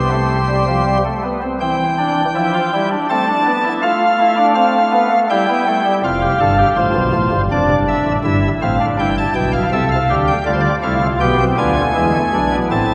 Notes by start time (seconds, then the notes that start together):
Already playing: C2 C3 G4 C6
0.12 A3
0.48 G3
0.67 F3
0.86 G3
1.05 A3
1.23 B3
1.42 C4
1.60 E3 C4 G5
1.98 D4
2.35 F3 E4
2.54 F4
2.73 G3 E4
2.91 D4
3.09 A3 C4 A5
3.28 D4
3.46 B3
3.64 E4
3.82 A3 F4 F5
4.19 E4
4.37 D4
4.55 C4 F5
4.92 B3
5.11 A3
5.30 G3 E4 G5
5.49 B3
5.67 A3
5.86 G3
6.03 F1 F2 F4 F5
6.21 G4
6.40 G1 G2 A4
6.58 G4
6.76 A1 A2 F4 C5
6.95 B1 B2
7.14 A1 A2
7.32 G1 G2
7.51 F1 F2 D4 D5
7.69 G1 G2
7.88 E5
8.06 A1 A2
8.24 G1 G2 E4 E5
8.62 A1 A2 C4 F5
8.81 D4
8.99 G1 G2 E4 G5
9.18 A5
9.35 B1 B2 G5
9.52 F5
9.72 C2 C3 A4 E5
9.91 F5
10.10 D2 D3 G4
10.27 G5
10.46 D2 D3 G3 F4 D5
10.53 C5
10.60 D5
10.83 C2 C3 A3 E4 F5
11.02 F4
11.20 B1 B2 B3 G4 G5
11.39 C4
11.58 D2 D3 B3 F4 G#5
11.76 A3
11.95 E2 E3 G#3 E4
12.14 A3
12.34 B1 B2 D4
12.52 B3
12.70 A1 A2 C4 E4 A5